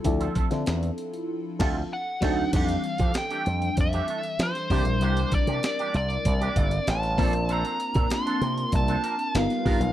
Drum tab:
CC |----------x---x-|x---------------|----------------|----------------|
HH |xxxxxxxx--------|xxxxxxxxxxxxxxox|xxxxxxxxxxxxxxox|xxxxxxxxxxxxxxox|
SD |---oo-----o---o-|----o-------oo--|----o-------oo--|----o-------oo--|
BD |o-o-------o---o-|o--o----o-----o-|--o-----o-o---o-|---o----o-----o-|